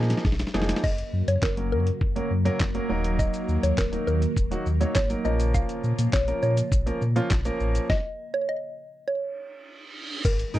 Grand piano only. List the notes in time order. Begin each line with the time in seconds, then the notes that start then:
Already playing: F3 A#3 D#4 G#4
0.54 F3 A#3 D#4 G#4
1.57 F#3 A#3 C#4 A#4
2.16 F#3 A#3 C#4 A#4
2.45 F#3 A#3 C#4 A#4
2.75 F#3 A#3 C#4 A#4
2.89 F#3 A#3 D#4 A#4
3.92 F#3 A#3 D#4 A#4
4.51 F#3 A#3 D#4 F#4
4.81 F#3 A#3 D#4 C#5
5.10 F#3 A#3 D#4 A#4
5.25 F3 A#3 C#4 A#4
6.27 F3 A#3 C#4 A#4
6.86 F3 A#3 C#4 A#4
7.16 F3 A#3 C#4 F4
7.45 F3 A#3 C#4 A#4
10.54 D#4 G#4 A#4